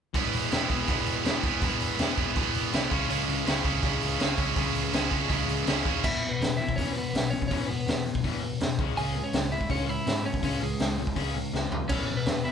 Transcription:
0.14 E1 E2 B2 E3 G#3 B3 E4, kick, open hi-hat
0.33 E1, open hi-hat
0.52 E1 E2 B2 E3 G#3 B3 E4, snare, open hi-hat
0.69 E1 E2 B2 E3 G#3 B3 E4, kick, open hi-hat
0.88 E1 E2 B2 E3 G#3 B3 E4, kick, open hi-hat
1.06 E1, open hi-hat
1.24 E1 E2 B2 E3 G#3 B3 E4, snare, open hi-hat
1.43 E1 E2 B2 E3 G#3 B3 E4, kick, open hi-hat
1.62 E1 E2 B2 E3 G#3 B3 E4, kick, open hi-hat
1.80 E1, open hi-hat
1.98 E1 E2 B2 E3 G#3 B3 E4, snare, open hi-hat
2.17 E1 E2 B2 E3 G#3 B3 E4, kick, open hi-hat
2.35 E1 E2 B2 E3 G#3 B3 E4, kick, open hi-hat
2.55 E1, open hi-hat
2.73 C2 E2 B2 E3 G#3 B3 E4, snare, open hi-hat
2.90 C#2 C#3 G#3 C#4 E4, kick, open hi-hat
3.08 C#2 C#3 G#3 C#4 E4, open hi-hat
3.28 C#2, open hi-hat
3.46 C#2 C#3 G#3 C#4 E4, snare, open hi-hat
3.65 C#2 C#3 G#3 C#4 E4, kick, open hi-hat
3.83 C#2 C#3 G#3 C#4 E4, kick, open hi-hat
4.02 C#2, open hi-hat
4.19 C#2 C#3 G#3 C#4 E4, snare, open hi-hat
4.37 C#2 C#3 G#3 C#4 E4, kick, open hi-hat
4.56 C#2 C#3 G#3 C#4 E4, kick, open hi-hat
4.75 C#2, open hi-hat
4.93 C#2 C#3 G#3 C#4 E4, snare, open hi-hat
5.10 C#2 C#3 G#3 C#4 E4, kick, open hi-hat
5.29 C#2 C#3 G#3 C#4 E4, kick, open hi-hat
5.48 C#2, open hi-hat
5.66 C#2 C#3 G#3 C#4 E4, snare, open hi-hat
5.84 D#2 C#3 G#3 C#4 E4, kick, open hi-hat
6.03 E1 E2 B2 E3 E4 E5, kick, crash
6.22 E2 B2
6.29 B3 B4
6.40 E1 E2 B2, snare, open hi-hat
6.57 E2 B2 E4 E5
6.69 kick
6.76 E1 E2 B2 E3 C#4 C#5, kick, open hi-hat
6.93 E2 B2 B4
6.97 B3
7.14 B1 E2 B2, snare, open hi-hat
7.30 E2 B2 C#4 C#5
7.42 kick
7.48 E1 E2 B2 E3 C#4 C#5, kick, open hi-hat
7.67 E1 E2 B2 B3 B4
7.87 E1 E2 B2, snare, open hi-hat
8.06 E2 B2
8.15 kick
8.24 E1 E2 B2 E3, kick, open hi-hat
8.43 E2 B2
8.60 E1 E2 B2, snare, open hi-hat
8.79 C#2 C#3 G#3 C#4, kick
8.97 C#2 C#3 G#3 C#4 G#4 G#5, open hi-hat
9.16 C#3 G#3
9.24 C#4 C#5
9.33 C#2 C#3 G#3, snare, open hi-hat
9.51 C#3 G#3 E4 E5
9.61 kick
9.69 C#2 C#3 G#3 C#4 C#5, kick, open hi-hat
9.87 C#3 G#3 E4 E5
10.06 G#2 C#3 G#3, snare, open hi-hat
10.24 C#3 G#3 C#4 C#5
10.34 kick
10.42 C#2 C#3 G#3 C#4 C#5, kick, open hi-hat
10.61 C#2 C#3 G#3 G#4
10.79 C#2 C#3 G#3, snare, open hi-hat
10.98 C#3 G#3
11.07 kick
11.16 C#2 C#3 G#3 C#4, kick, open hi-hat
11.36 C#3 G#3
11.53 C#2 C#3 G#3, snare
11.71 D#2 C#3 G#3, floor tom
11.89 E1 E2 B2 E3 C#4 C#5, kick, open hi-hat, crash
12.08 E2 B2
12.16 B3 B4
12.26 E1 E2 B2, snare, open hi-hat
12.44 E2 B2 E4 E5

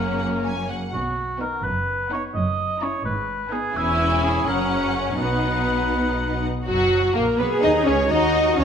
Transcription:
Already playing: F#1 F#2 A#3 C#4 A#4 F#5
0.19 F#5
0.45 G#5
0.70 F#5
0.93 B1 B2 F#4
1.39 B3 D#4 A#4 F#5
1.64 F#1 F#2 B4
2.11 B3 D#4 C#5 F#5
2.35 F#1 F#2 D#5
2.81 C#4 E4 C#5 A#5
3.05 G#1 G#2 B4
3.52 B3 D#4 G#4 G#5
3.75 E1 E2 C#4 E4 G#5
4.24 G#4
4.46 F#1 F#2 C#4 A#4 F#5
4.96 C#5
5.19 B1 B2 B3 D#4 B4 F#5
6.66 F#1 F#3 F#4
7.15 A#1 A#3 A#4
7.38 B1 B3 G#4 B4
7.62 D#2 D#4 D#5
7.86 C#2 C#4 C#5
8.10 D#2 D#4 F#4 D#5
8.58 C#2 C#4 C#5

